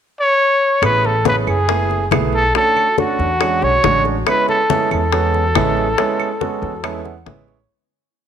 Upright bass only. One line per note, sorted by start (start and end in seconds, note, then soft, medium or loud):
0.82 1.43 A1 medium
1.47 2.08 F#1 medium
2.11 2.50 B1 medium
3.19 3.59 E2 medium
3.62 3.82 B1 medium
3.84 4.22 A1 medium
4.91 5.51 E2 medium
5.55 5.93 A1 medium
6.62 7.22 E2 medium
7.26 7.64 A1 medium